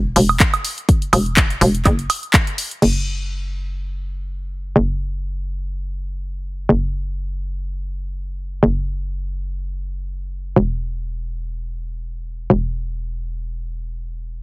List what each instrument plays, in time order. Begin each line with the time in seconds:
Already playing: fm bass E1
0.16 fm bass E1, open hi-hat
0.29 high woodblock
0.40 kick, clap, closed hi-hat
0.54 closed hi-hat, high woodblock
0.65 open hi-hat
0.78 closed hi-hat
0.89 kick, closed hi-hat
1.02 closed hi-hat
1.13 fm bass E1, open hi-hat, high woodblock
1.26 closed hi-hat
1.37 kick, clap, closed hi-hat
1.50 closed hi-hat
1.61 fm bass E1, open hi-hat
1.75 closed hi-hat
1.85 fm bass F#1, kick, clap, closed hi-hat, high woodblock
1.99 closed hi-hat
2.10 open hi-hat, high woodblock
2.23 closed hi-hat
2.33 kick, clap, closed hi-hat
2.47 closed hi-hat
2.58 open hi-hat
2.71 closed hi-hat
2.82 fm bass F#1, crash
4.76 fm bass F#1
6.69 fm bass F#1
8.63 fm bass F#1
10.56 fm bass E1
12.50 fm bass E1